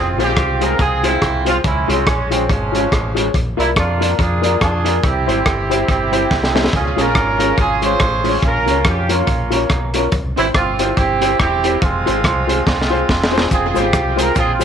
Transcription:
Already playing: F1 C4 F4
0.18 A#1 G#3 C4 F4 G#4 C5, closed hi-hat
0.22 G4
0.37 C2, kick, cross-stick, closed hi-hat
0.60 G#3 C4 F4 G#4 A#4 C5, closed hi-hat
0.79 C2 C4 F4 G#4, kick, closed hi-hat
1.03 G#3 C4 E4 F4 G#4 C5, closed hi-hat
1.22 C2, kick, cross-stick, closed hi-hat
1.45 G#3 C4 F4 G#4 C5, closed hi-hat
1.64 C#2 G#3 C#4 E4, kick, closed hi-hat
1.87 C2 G#3 C4 C#4 F4 G#4 C#5, closed hi-hat
2.07 A#1 C#4, kick, cross-stick, closed hi-hat
2.31 G#3 C4 C#4 F4 G#4 C#5, closed hi-hat
2.50 G#1 F3 G#3 C#4, kick, closed hi-hat
2.72 G#3 C#4 F4 G#4 C#5, closed hi-hat
2.91 A1 G#4 C#5, kick, cross-stick, closed hi-hat
3.15 G#3 C#4 F4 G#4 C#5, closed hi-hat
3.34 A#1, kick, closed hi-hat
3.57 C2 A#3 D4 E4 F4 A#4 D5, closed hi-hat
3.76 F2 A#3 D4 F4, kick, cross-stick, closed hi-hat
4.00 A#3 D4 F4 A#4 D5, closed hi-hat
4.19 F2 D4 F4 G#4, kick, closed hi-hat
4.42 A#3 D4 F4 A#4 D5, closed hi-hat
4.61 F2 D4 F4 G#4, kick, cross-stick, closed hi-hat
4.84 A#3 D4 F4 A#4 D5, closed hi-hat
5.03 C2 C4 E4 G4, kick, closed hi-hat
5.26 G#1 G3 C4 E4 G4 C5, closed hi-hat
5.46 G1, kick, cross-stick, closed hi-hat
5.70 G3 C4 E4 G4 C5, closed hi-hat
5.88 G1 C4 E4 G4, kick, closed hi-hat
6.11 G3 C4 E4 G4 C5, closed hi-hat
6.31 C2, kick, snare
6.44 snare
6.54 G3 C4 E4 G4 C5, snare
6.64 snare
6.73 C#2 C#4 F4 G#4, kick, closed hi-hat
6.96 A#1 G#3 C#4 F4 G#4 A#4 C#5, closed hi-hat
7.15 G#1, kick, cross-stick, closed hi-hat
7.38 G#3 C#4 F4 G#4 C#5, closed hi-hat
7.58 G#1 C#4 F4 G#4, kick, closed hi-hat
7.82 G#3 C#4 F4 G#4 C5 C#5, closed hi-hat
8.00 A1, kick, cross-stick, closed hi-hat
8.24 G#3 C#4 F4 G#4 C#5, open hi-hat
8.43 A#1 C#4 F4 A#4, kick, closed hi-hat
8.66 C#2 A#3 C#4 F4 A#4 C#5, closed hi-hat
8.85 F2 G4, kick, cross-stick, closed hi-hat
9.09 A#3 C#4 F4 A#4 C#5, closed hi-hat
9.27 A#1, kick, closed hi-hat
9.50 A#3 C#4 F4 A#4 C#5, closed hi-hat
9.70 B1, kick, cross-stick, closed hi-hat
9.94 A#3 C#4 F4 A#4 C#5, closed hi-hat
10.12 C2, kick, closed hi-hat
10.36 G#1 C4 E4 G4 C5, closed hi-hat
10.54 G1 C4 F4, kick, cross-stick, closed hi-hat
10.79 C4 E4 G4 C5, closed hi-hat
10.96 G1 C4 E4 G4, kick, closed hi-hat
11.21 C4 E4 G4 C5, closed hi-hat
11.39 E1 C4 E4 G4, kick, cross-stick, closed hi-hat
11.64 C4 E4 G4 C5, closed hi-hat
11.81 F1 G#3 C4 F4, kick, closed hi-hat
12.06 G#1 C4 F4 G#4 C5, closed hi-hat
12.24 C2, kick, cross-stick, closed hi-hat
12.47 C4 F4 G#4 C5, closed hi-hat
12.66 C2 G#3 C4 F4, kick, snare
12.82 snare
12.90 C4 F4 G#4 C5
13.09 E1 G#4 C5, kick, snare
13.24 snare
13.31 C4 F4 G#4 C5
13.38 snare
13.51 F1 C4 F4 G#4, kick, closed hi-hat, cabasa
13.74 G#1 G#3 C4 F4 G#4 C5, closed hi-hat, cabasa
13.78 C4 G4
13.93 C2, kick, cross-stick, closed hi-hat, cabasa
14.16 G#3 C4 F4 G#4 A#4 C5, closed hi-hat, cabasa
14.35 A#1 C4 F4 G#4, kick, closed hi-hat, cabasa
14.54 F4
14.59 G#3 C4 F4 G#4 C5, closed hi-hat, cabasa

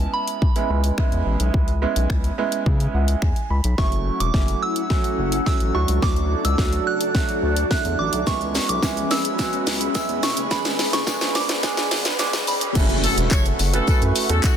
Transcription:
Already playing: G#3 B3 C#4 E4 A5
0.00 closed hi-hat
0.14 B5
0.28 closed hi-hat
0.42 kick
0.56 G#3 B3 C#4 E4, closed hi-hat
0.70 C#2 G#3 B3 C#4 E4
0.84 closed hi-hat
0.98 G#3 B3 C#4 E4, finger snap, kick
1.12 E2, closed hi-hat
1.26 A1
1.40 B1, closed hi-hat
1.54 C#2, kick
1.68 closed hi-hat
1.82 G#3 B3 C#4 E4
1.96 B1, closed hi-hat
2.10 C#2, finger snap, kick
2.24 closed hi-hat
2.38 G#3 B3 C#4 E4
2.52 closed hi-hat
2.66 C#3, kick
2.80 closed hi-hat
2.94 C#2 F#5
3.08 closed hi-hat
3.22 E2, finger snap, kick
3.36 closed hi-hat
3.50 C#2 B5
3.64 B1, closed hi-hat
3.78 F#1 F#3 A3 C#4 E4 A4 F#5 C#6, kick, snare, riser
3.92 closed hi-hat
4.20 E1 D6, closed hi-hat
4.34 F#1 F#3 A3 C#4 E4, kick, snare
4.48 closed hi-hat
4.63 E6
4.76 closed hi-hat
4.90 F#3 A3 C#4 F#4, kick, snare
5.04 closed hi-hat
5.19 F#1
5.32 closed hi-hat
5.46 F#3 A3 C#4 F#4 E6, kick, snare
5.60 A1, closed hi-hat
5.74 D2 F#3 A3 D4 F#4 D5 A5 C#6
5.88 C#2, closed hi-hat
6.02 D2 D6, kick, snare
6.16 closed hi-hat
6.45 C#2 E6, closed hi-hat
6.58 D2 F#3 A3 D4 F#4, kick, snare
6.73 closed hi-hat
6.87 F#6
7.01 closed hi-hat
7.14 F#3 A3 D4 F#4, kick, snare
7.29 closed hi-hat
7.43 D2
7.57 closed hi-hat
7.70 F#3 A3 D4 E4 F#6, kick, snare
7.85 E2, closed hi-hat
7.99 A1 D6
8.13 B1, closed hi-hat
8.27 C#2 G#3 B3 C#4 E4 G#4 E5 B5 C#6, kick, snare, shaker
8.41 closed hi-hat, shaker
8.55 snare, open hi-hat, tambourine, shaker
8.69 B1 D6, closed hi-hat, shaker
8.83 C#2 G#3 B3 C#4 E4, kick, snare, tambourine, shaker
8.97 closed hi-hat, shaker
9.11 E6, snare, open hi-hat, tambourine, shaker
9.25 closed hi-hat, shaker
9.39 G#3 B3 C#4 F#4, kick, snare, tambourine, shaker
9.53 closed hi-hat, shaker
9.67 C#2, snare, open hi-hat, shaker
9.81 closed hi-hat, shaker
9.95 G#3 B3 C#4 E4 E6, kick, snare, tambourine, shaker
10.09 E2, closed hi-hat, shaker
10.23 E1 C#6, snare, open hi-hat, tambourine, shaker
10.37 F#1, closed hi-hat, shaker
10.51 G#1 G#3 B3 D4 G#4 B4 D5 B5, kick, snare, tambourine, shaker
10.65 snare, closed hi-hat, shaker
10.79 snare, open hi-hat, tambourine, shaker
10.93 F#1 C#6, snare, closed hi-hat, shaker
11.07 G#1 G#3 B3 D4 G#4, kick, snare, tambourine, shaker
11.21 snare, closed hi-hat, shaker
11.35 D6, snare, open hi-hat, tambourine, shaker
11.49 snare, closed hi-hat, shaker
11.63 G#3 B3 D4 G#4, kick, snare, tambourine, shaker
11.77 snare, closed hi-hat, shaker
11.91 G#1, snare, open hi-hat, shaker
12.05 snare, closed hi-hat, shaker
12.19 G#3 B3 D4 G#4 D6, snare, tambourine, shaker
12.33 B1, snare, closed hi-hat, shaker
12.47 F#1 B5, open hi-hat, tambourine, shaker
12.61 E1, closed hi-hat, shaker
12.75 F#1 A3 C#4 E4 F#4 A4 E5 F#5 C#6, kick, crash, tambourine, impact, shaker
12.89 closed hi-hat, shaker
13.04 A4, open hi-hat, tambourine, shaker
13.17 E1, closed hi-hat, shaker
13.31 F#1 C#5, kick, clap, tambourine, shaker
13.46 closed hi-hat, shaker
13.59 F#1, open hi-hat, tambourine, shaker
13.73 A3 C#4 E4 F#4 A4 B4, closed hi-hat, shaker
13.87 F#2 A3 C#4 E4 F#4 A4 B4, kick, tambourine, shaker
14.02 F#2, closed hi-hat, shaker
14.16 open hi-hat, tambourine, shaker
14.29 E2 A3 C#4 E4 F#4 A4, closed hi-hat, shaker
14.43 F#4, kick, clap, tambourine, shaker

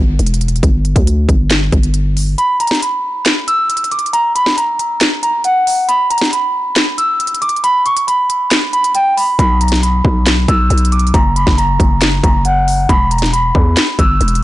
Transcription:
Already playing: G1
0.19 E1, closed hi-hat
0.26 closed hi-hat
0.34 closed hi-hat
0.41 closed hi-hat
0.48 closed hi-hat
0.56 closed hi-hat
0.63 G1, kick, closed hi-hat
0.85 closed hi-hat
0.96 D2, kick, closed hi-hat
1.07 closed hi-hat
1.29 G1, kick, closed hi-hat
1.50 snare, clap, closed hi-hat
1.72 G1, kick, closed hi-hat
1.83 closed hi-hat
1.94 closed hi-hat
2.17 open hi-hat
2.38 B5, closed hi-hat
2.60 A#5, closed hi-hat
2.67 snare, closed hi-hat
2.75 closed hi-hat
2.82 B5, closed hi-hat
3.25 snare, clap, closed hi-hat
3.48 E6, closed hi-hat
3.70 closed hi-hat
3.77 closed hi-hat
3.84 closed hi-hat
3.91 D6, closed hi-hat
3.99 closed hi-hat
4.06 closed hi-hat
4.13 A#5, closed hi-hat
4.35 B5, closed hi-hat
4.46 snare
4.57 A#5, closed hi-hat
4.79 closed hi-hat
5.01 snare, clap, closed hi-hat
5.23 A#5, closed hi-hat
5.44 F#5, closed hi-hat
5.67 open hi-hat
5.89 B5, closed hi-hat
6.10 A#5, closed hi-hat
6.18 snare, closed hi-hat
6.25 closed hi-hat
6.32 B5, closed hi-hat
6.76 snare, clap, closed hi-hat
6.98 E6, closed hi-hat
7.20 closed hi-hat
7.27 closed hi-hat
7.35 closed hi-hat
7.42 D6, closed hi-hat
7.49 closed hi-hat
7.56 closed hi-hat
7.64 B5, closed hi-hat
7.86 C#6, closed hi-hat
7.97 closed hi-hat
8.07 B5, closed hi-hat
8.30 closed hi-hat
8.51 snare, clap, closed hi-hat
8.73 B5, closed hi-hat
8.84 closed hi-hat
8.95 G5, closed hi-hat
9.17 B5, open hi-hat
9.39 B1 B5, kick, closed hi-hat
9.61 A#5, closed hi-hat
9.68 snare, closed hi-hat
9.75 closed hi-hat
9.83 B5, closed hi-hat
10.05 B1, kick
10.26 snare, clap, closed hi-hat
10.48 B1 E6, kick, closed hi-hat
10.70 B1, closed hi-hat
10.78 closed hi-hat
10.85 closed hi-hat
10.92 D6, closed hi-hat
10.99 closed hi-hat
11.07 closed hi-hat
11.14 F#1 A#5, kick, closed hi-hat
11.36 B5, closed hi-hat
11.47 F#1, kick, snare
11.58 A#5, closed hi-hat
11.80 F#1, kick, closed hi-hat
12.01 snare, clap, closed hi-hat
12.24 F#1 A#5, kick, closed hi-hat
12.45 F#5, closed hi-hat
12.68 open hi-hat
12.89 E1 B5, kick, closed hi-hat
13.11 A#5, closed hi-hat
13.18 snare, closed hi-hat
13.26 closed hi-hat
13.33 B5, closed hi-hat
13.55 E2, kick
13.77 snare, clap, closed hi-hat
13.99 G1 E6, kick, closed hi-hat
14.21 E1, closed hi-hat
14.28 closed hi-hat
14.35 closed hi-hat

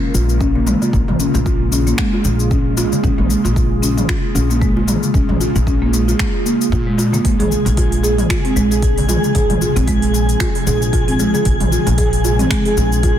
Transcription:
Already playing: C#3 G#3 A#3 F4 A#4
0.14 A#1 F4, darbuka ka, shaker
0.29 shaker
0.41 C#4, kick, shaker
0.55 A#3, darbuka dum
0.67 G#3, mid tom, darbuka tek, shaker
0.82 F4, darbuka ka, darbuka dum, shaker
0.90 A#1 G#4, kick, shaker
1.08 A#1, mid tom, darbuka dum
1.20 C#4, darbuka ka, shaker
1.34 A#1, darbuka tek, shaker
1.46 F4, kick, shaker
1.72 C#4, darbuka ka, shaker
1.87 A#3, darbuka tek, shaker
1.98 G#3, finger snap, kick, shaker
2.13 F4, darbuka ka
2.25 A#1, darbuka ka, shaker
2.40 shaker
2.51 C#4, kick, shaker
2.77 F4, darbuka ka, darbuka tek, shaker
2.92 darbuka dum, shaker
3.03 A#1 C#4, kick, shaker
3.18 A#1 A#3, mid tom
3.29 G#3, darbuka ka, shaker
3.44 A#1 F4, darbuka tek, shaker
3.56 kick, shaker
3.82 C#4, darbuka ka, shaker
3.97 mid tom, shaker
4.09 F4, finger snap, kick, shaker
4.35 A#1 C#4, darbuka ka, shaker
4.50 A#3, shaker
4.61 G#3, kick, shaker
4.76 F4, darbuka dum
4.88 mid tom, darbuka tek, shaker
5.03 darbuka ka, darbuka dum, shaker
5.14 A#1 C#4, kick, shaker
5.29 A#1, mid tom, darbuka dum
5.40 F4, darbuka ka, shaker
5.56 A#1, darbuka tek, shaker
5.67 C#4, kick, shaker
5.82 A#3
5.93 G#3, darbuka ka, shaker
6.08 F4, darbuka tek, shaker
6.19 finger snap, kick, shaker
6.34 darbuka ka
6.46 A#3, darbuka ka, shaker
6.61 shaker
6.72 A#2 F4, kick, shaker
6.87 G#3
6.98 F4, darbuka ka, darbuka tek, shaker
7.13 A#3, darbuka dum, shaker
7.25 A#1 C3 G#3 G#4 G#5, kick, open hi-hat, shaker
7.39 A#1 G#4, mid tom, open hi-hat
7.51 darbuka ka, shaker
7.57 F3
7.65 A#1, open hi-hat, darbuka tek, shaker
7.77 F4, kick, open hi-hat, shaker
7.92 open hi-hat
8.03 G#4, darbuka ka, shaker
8.18 mid tom, open hi-hat, shaker
8.30 F4, finger snap, kick, open hi-hat
8.45 C4, open hi-hat
8.56 A#1 G#3, darbuka ka, shaker
8.71 G#4, shaker
8.82 kick, open hi-hat, shaker
8.98 open hi-hat, darbuka dum
9.09 F4, mid tom, darbuka tek, shaker
9.24 darbuka ka, darbuka dum, shaker
9.35 A#1 G#4, kick, open hi-hat, shaker
9.50 A#1, mid tom, open hi-hat, darbuka dum
9.61 F4, darbuka ka, shaker
9.76 A#1 C4, open hi-hat, darbuka tek, shaker
9.88 G#3, kick, open hi-hat, shaker
10.02 G#4, open hi-hat
10.14 darbuka ka, shaker
10.29 open hi-hat, darbuka tek, shaker
10.40 F4, finger snap, kick, open hi-hat, shaker
10.55 open hi-hat, darbuka ka
10.67 A#1 G#4, darbuka ka, shaker
10.82 shaker
10.93 F4, kick, open hi-hat, shaker
11.08 C4, open hi-hat
11.19 G#3, darbuka ka, darbuka tek, shaker
11.34 G#4, darbuka dum, shaker
11.45 A#1, kick, open hi-hat, shaker
11.60 A#1, mid tom, open hi-hat
11.72 F4, darbuka ka, shaker
11.86 A#1, open hi-hat, darbuka tek, shaker
11.98 G#4, kick, open hi-hat, shaker
12.13 open hi-hat
12.24 F4, darbuka ka, shaker
12.39 C4, mid tom, open hi-hat, shaker
12.50 G#3, finger snap, kick, open hi-hat, shaker
12.65 G#4, open hi-hat
12.77 A#1, darbuka ka, shaker
12.92 shaker
13.03 F4, kick, open hi-hat, shaker

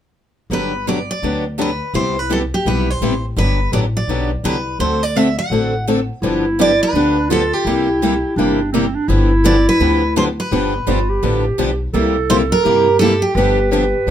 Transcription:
0.50 G1 D3 F#3 B3 D4 G4 B4
0.87 D3 F#3 B3 D4 G4 D5
1.11 D5
1.22 D2 D3 F#3 B3 D4 G4
1.58 D3 F#3 B3 D4 G4 B4
1.94 C2 C3 G3 B3 E4 G4 C5
2.19 B4
2.29 C3 G3 B3 E4 G4 A4
2.54 G4
2.65 B1 C3 G3 B3 E4 G4 B4
2.90 C5
3.01 A1 C3 G3 B3 E4 G4
3.37 G1 D3 F#3 B3 D4 G4 B4
3.72 A1 D3 F#3 B3 D4 G4 D5
3.97 D5
4.07 B1 D3 F#3 B3 D4 G4
4.43 C2 D3 F#3 B3 D4 G4 B4
4.79 D2 D3 A3 C4 F#4 A4 C5
5.03 D5
5.16 D3 A3 C4 F#4 A4 E5
5.39 F#5
5.50 A1 D3 A3 C4 F#4 A4
5.88 D3 A3 C4 F#4 A4
6.22 G1 D3 F3 B3 D4 E4 G4
6.59 D3 F3 B3 D4 G4 D5
6.83 B4
6.93 D2 D3 F3 B3 D4 G4
7.29 D3 F3 B3 D4 F4 G4 A4
7.53 G4
7.65 C2 C3 G3 A#3 E4 G4
8.02 C3 G3 A#3 E4 G4
8.36 G1 C3 G3 A#3 D4 E4 G4
8.73 C3 G3 A#3 C4 E4 G4
8.95 D4
9.08 G1 D3 F3 B3 D4 E4 G4
9.44 D3 F3 B3 D4 G4 D5
9.69 B4
9.80 D2 D3 F3 B3 D4 G4
10.16 D3 F3 B3 D4 G4 C5
10.40 B4
10.51 G1 D3 F3 B3 D4 G4
10.87 G1 D3 F3 B3 D4 F4 G4
11.09 G4
11.22 A1 D3 F3 B3 D4 G4
11.58 B1 D3 F3 B3 D4 G4
11.93 C2 C3 G3 A#3 E4 G4 A4
12.30 C3 G3 A#3 E4 G4 C5
12.52 A#4
12.64 G2 C3 G3 A#3 E4 G4
12.99 C3 G3 A#3 E4 G4 A4
13.22 G4
13.35 G1 D3 F3 B3 D4 G4 B4
13.71 D3 F3 B3 D4 G4 B4
14.07 D2 D3

